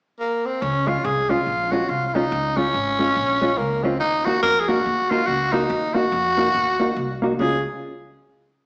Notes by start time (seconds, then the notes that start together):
0.20 A#3
0.45 C4
0.62 C#2 C#4
0.87 G#3 C#4 F4
1.04 C2 G#4
1.29 G#3 C#4 F4
1.47 A#1
1.72 G#3 C#4 F4 F#4
1.89 C2 F4
2.07 F4
2.14 G#3 C#4 D#4 F4
2.32 C#2
2.57 G#3 C#4 F4
2.74 G#1
2.99 G#3 C#4 F4
3.16 A#1
3.41 G#3 C#4 F4
3.58 C#2 A#3
3.83 G#3 C4 C#4 F4
4.00 D#2 D#4
4.25 A#3 D#4 F#4
4.42 F2 A#4
4.60 G#4
4.68 A#3 D#4 F#4
4.86 D#2
5.10 A#3 D#4 F4 F#4
5.27 C#2 F#4
5.52 A#3 D#4 F#4
5.70 D#2
5.94 A#3 D#4 F#4
6.12 F2
6.37 A#3 D#4 F#4
6.55 D#2
6.80 A#3 D#4 F#4
6.96 C2
7.22 A#3 D#4 F#4
7.39 C#2 G#3 C#4 F4 G#4